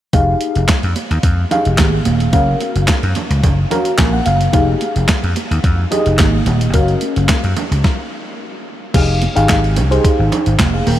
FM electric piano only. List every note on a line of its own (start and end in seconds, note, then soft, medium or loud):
0.13 0.73 D#4 medium
0.13 0.73 G4 medium
0.13 0.73 G#4 medium
0.13 0.73 F5 medium
1.51 1.96 D#4 medium
1.51 1.96 G4 medium
1.51 1.96 G#4 medium
1.51 1.97 F5 medium
2.33 2.93 C#4 medium
2.33 2.93 F#4 medium
2.33 2.93 A#4 medium
2.33 2.93 F5 medium
3.71 4.16 C#4 medium
3.71 4.16 F#4 medium
3.71 4.17 A#4 medium
3.71 4.17 F5 medium
3.71 3.97 A#5 medium
3.98 4.12 G#5 medium
4.13 4.25 F#5 medium
4.26 4.52 F5 medium
4.53 5.13 D#4 medium
4.53 5.13 G4 medium
4.53 5.13 G#4 medium
4.53 5.14 F5 medium
5.91 6.36 D#4 medium
5.91 6.37 G4 medium
5.91 6.37 G#4 medium
5.91 6.37 D#5 medium
6.74 7.34 C#4 medium
6.74 7.34 F#4 medium
6.74 7.34 A#4 medium
6.74 7.34 F5 medium
8.94 9.17 D#4 medium
8.94 9.17 G4 medium
8.94 9.17 G#4 medium
8.94 9.17 F5 medium
9.35 9.66 D#4 medium
9.35 9.66 G4 medium
9.35 9.66 G#4 medium
9.35 9.66 F5 loud
9.91 10.50 D#4 medium
9.91 10.51 G4 medium
9.91 10.51 G#4 medium
9.91 10.51 C5 medium
10.74 10.86 G#4 medium
10.74 10.86 F5 medium
10.87 10.99 A#4 medium
10.87 10.99 G5 medium